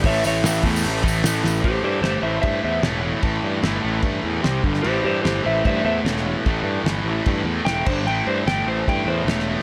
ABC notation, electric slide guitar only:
X:1
M:4/4
L:1/8
Q:1/4=149
K:Glyd
V:1 name="Electric slide guitar"
[ce] [ce] e z4 z | [G=c] [Gc] [Gc] [ce] [ce] [ce] ^c2 | z8 | [G=c] [Gc] [Gc] [ce] [ce] [ce] ^c2 |
z6 g =c | g =c g c g c ^c2 |]